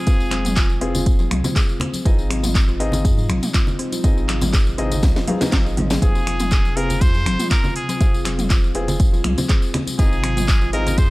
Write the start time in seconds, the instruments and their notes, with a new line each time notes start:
Already playing: ambient pad C3 F3 G#3 F4, muted trumpet G#4
0.07 felt piano C4 F4 G#4, kalimba G#4, kick, closed hi-hat, tambourine
0.20 sub bass F1, tambourine
0.31 kalimba C4, finger snap, clap, open hi-hat, muted conga
0.45 closed hi-hat, mid tom, tambourine, high conga
0.56 kalimba F4, kick, clap, closed hi-hat, tambourine
0.69 tambourine, muted conga
0.81 sub bass F1, felt piano C4 F4 G#4, kalimba C4, open hi-hat
0.95 kalimba F4, closed hi-hat, tambourine, low conga
1.06 kick, closed hi-hat, tambourine
1.19 kalimba F4, tambourine, muted conga
1.31 sub bass C2, finger snap, mid tom, open hi-hat, high conga
1.44 kalimba C4, closed hi-hat, tambourine, low conga
1.56 kalimba G#4, kick, clap, closed hi-hat, tambourine, muted conga
1.69 tambourine
1.80 kalimba C4, finger snap, open hi-hat, low conga
1.93 closed hi-hat, tambourine, muted conga, high conga
2.05 sub bass G#1, ambient pad C3 F3 G#3 D#4, felt piano C4 D#4 F4 G#4 D#5, kalimba F4, kick, closed hi-hat, tambourine
2.19 tambourine
2.30 kalimba C4, finger snap, open hi-hat, muted conga
2.43 kalimba F4, closed hi-hat, mid tom, tambourine, high conga
2.55 kick, clap, closed hi-hat, tambourine
2.68 kalimba F4, tambourine, muted conga
2.80 felt piano C4 D#4 F4 G#4 D#5, open hi-hat
2.92 kalimba C4, closed hi-hat, tambourine, low conga
3.05 sub bass G#2, kalimba G#4, kick, closed hi-hat, tambourine
3.18 tambourine, muted conga
3.29 sub bass G#1, kalimba C4, finger snap, open hi-hat, high conga
3.43 closed hi-hat, mid tom, tambourine
3.54 kalimba F4, finger snap, kick, clap, closed hi-hat, tambourine, muted conga, high conga
3.67 tambourine, low conga
3.79 kalimba C4, open hi-hat
3.92 kalimba F4, closed hi-hat, tambourine, muted conga
4.04 ambient pad A#3, felt piano C4 D#4 F4 G#4 D#5, kick, closed hi-hat, tambourine
4.17 sub bass G#1, kalimba F4, tambourine
4.29 finger snap, clap, open hi-hat, muted conga
4.41 kalimba C4, closed hi-hat, mid tom, tambourine, high conga, low conga
4.53 kalimba G#4, kick, clap, closed hi-hat, tambourine
4.67 tambourine, muted conga
4.78 sub bass G#1, kalimba C4, felt piano C4 D#4 F4 G#4 D#5, open hi-hat
4.92 closed hi-hat, tambourine, low conga
5.03 sub bass C2, kalimba F4, kick, snare, closed hi-hat, mid tom, tambourine
5.16 snare, tambourine, muted conga
5.28 felt piano C4 D#4 F4 G#4 F5, kalimba G#4, mid tom, open hi-hat, high tom, high conga
5.41 felt piano C4 D#4 F4 G#4 D#5, kalimba G#4, snare, closed hi-hat, tambourine, low conga
5.52 sub bass G#1, kick, snare, clap, closed hi-hat, tambourine, high conga
5.66 kalimba D#5, tambourine
5.77 kalimba D#4, mid tom, open hi-hat, high conga, low conga
5.90 kalimba G#4, snare, closed hi-hat, tambourine, muted conga, high conga
6.02 sub bass F1, ambient pad F3 G#3 F4, felt piano C4 F4 G#4, muted trumpet G#4, kick, closed hi-hat, tambourine
6.15 kalimba F4, tambourine
6.27 finger snap, open hi-hat, muted conga
6.39 kalimba C4, closed hi-hat, mid tom, tambourine, high conga
6.51 kalimba G#4, kick, clap, closed hi-hat, tambourine
6.65 tambourine, muted conga
6.76 kalimba C4, felt piano C4 F4 G#4, muted trumpet A#4, open hi-hat
6.90 closed hi-hat, tambourine, low conga
7.01 sub bass F2, kalimba F4, muted trumpet C5, kick, closed hi-hat, tambourine
7.14 tambourine, muted conga
7.26 sub bass F1, kalimba C4, finger snap, open hi-hat, high conga
7.39 kalimba F4, closed hi-hat, mid tom, tambourine
7.51 muted trumpet A#4, finger snap, kick, clap, closed hi-hat, tambourine, muted conga, high conga
7.64 kalimba F4, tambourine, low conga
7.76 muted trumpet G#4, open hi-hat
7.89 kalimba C4, closed hi-hat, tambourine, muted conga
8.00 felt piano C4 F4 G#4, kalimba G#4, kick, closed hi-hat, tambourine
8.14 sub bass F1, tambourine
8.25 kalimba C4, finger snap, clap, open hi-hat, muted conga
8.39 closed hi-hat, mid tom, tambourine, high conga
8.50 kalimba F4, kick, clap, closed hi-hat, tambourine
8.64 tambourine, muted conga
8.75 sub bass F1, kalimba C4, felt piano C4 F4 G#4, open hi-hat
8.88 kalimba F4, closed hi-hat, tambourine, low conga
9.00 kick, closed hi-hat, tambourine
9.13 kalimba F4, tambourine, muted conga
9.24 sub bass C2, finger snap, mid tom, open hi-hat, high conga
9.38 kalimba C4, closed hi-hat, tambourine, low conga
9.49 kalimba G#4, kick, clap, closed hi-hat, tambourine
9.62 tambourine
9.74 kalimba C4, finger snap, open hi-hat, low conga
9.87 closed hi-hat, tambourine, muted conga, high conga
9.99 sub bass G#1, felt piano C4 D#4 F4 G#4 D#5, ambient pad D#4, kalimba F4, muted trumpet G#4, kick, closed hi-hat, tambourine
10.13 tambourine
10.24 kalimba C4, finger snap, open hi-hat, muted conga
10.37 kalimba F4, closed hi-hat, mid tom, tambourine, high conga
10.48 kick, clap, closed hi-hat, tambourine
10.61 kalimba F4, tambourine, muted conga
10.73 felt piano C4 D#4 F4 G#4 D#5, muted trumpet A#4, open hi-hat
10.86 kalimba C4, closed hi-hat, tambourine, low conga
10.98 sub bass G#2, kalimba G#4, muted trumpet C5, kick, closed hi-hat, tambourine